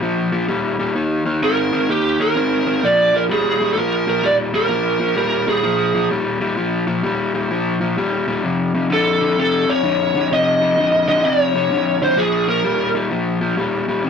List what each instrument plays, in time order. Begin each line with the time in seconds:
0.02 overdriven electric guitar A#2 F3
0.32 overdriven electric guitar A#2 F3
0.48 overdriven electric guitar A#2 G3
0.79 overdriven electric guitar A#2 G3
0.95 overdriven electric guitar D#3 A#3
1.25 overdriven electric guitar D#3 A#3
1.42 overdriven electric guitar D#3 C4, lead electric guitar A#4
1.73 overdriven electric guitar D#3 C4
1.89 overdriven electric guitar D#3 A#3, lead electric guitar G4
2.20 overdriven electric guitar D#3 A#3, lead electric guitar A#4
2.36 overdriven electric guitar D#3 C4
2.66 overdriven electric guitar D#3 C4
2.83 overdriven electric guitar A#2 F3, lead electric guitar D5
3.13 overdriven electric guitar A#2 F3, lead electric guitar A#4
3.29 overdriven electric guitar A#2 G3, lead electric guitar G#4
3.59 overdriven electric guitar A#2 G3
3.73 overdriven electric guitar A#2 F3, lead electric guitar A4
3.79 lead electric guitar A#4
4.07 overdriven electric guitar A#2 F3, lead electric guitar A#4
4.23 overdriven electric guitar A#2 G3, lead electric guitar D5
4.54 overdriven electric guitar A#2 G3, lead electric guitar A#4
4.69 overdriven electric guitar A#2 F3
5.00 overdriven electric guitar A#2 F3
5.17 overdriven electric guitar A#2 G3, lead electric guitar A#4
5.47 overdriven electric guitar A#2 G3, lead electric guitar G#4
5.63 overdriven electric guitar A#2 F3
5.95 overdriven electric guitar A#2 F3
6.11 overdriven electric guitar A#2 G3
6.41 overdriven electric guitar A#2 G3
6.57 overdriven electric guitar A#2 F3
6.87 overdriven electric guitar A#2 F3
7.03 overdriven electric guitar A#2 G3
7.34 overdriven electric guitar A#2 G3
7.51 overdriven electric guitar A#2 F3
7.81 overdriven electric guitar A#2 F3
7.97 overdriven electric guitar A#2 G3
8.28 overdriven electric guitar A#2 G3
8.44 overdriven electric guitar F2 C3
8.75 overdriven electric guitar F2 C3
8.90 overdriven electric guitar F2 D3, lead electric guitar A4
9.21 overdriven electric guitar F2 D3
9.37 overdriven electric guitar F2 C3, lead electric guitar A4
9.67 overdriven electric guitar F2 C3, lead electric guitar C#5
9.83 overdriven electric guitar F2 D3
10.15 overdriven electric guitar F2 D3
10.31 overdriven electric guitar F2 C3, lead electric guitar D#5
10.61 overdriven electric guitar F2 C3
10.78 overdriven electric guitar F2 D3
11.08 overdriven electric guitar F2 D3, lead electric guitar D#5
11.24 overdriven electric guitar F2 C3, lead electric guitar D5
11.42 lead electric guitar C#5
11.55 overdriven electric guitar F2 C3
11.71 overdriven electric guitar F2 D3
12.02 overdriven electric guitar F2 D3, lead electric guitar C5
12.17 overdriven electric guitar A#2 F3, lead electric guitar G#4
12.48 overdriven electric guitar A#2 F3, lead electric guitar A#4
12.64 overdriven electric guitar A#2 G3
12.95 overdriven electric guitar A#2 G3
13.11 overdriven electric guitar A#2 F3
13.41 overdriven electric guitar A#2 F3
13.57 overdriven electric guitar A#2 G3
13.88 overdriven electric guitar A#2 G3
14.04 overdriven electric guitar F2 C3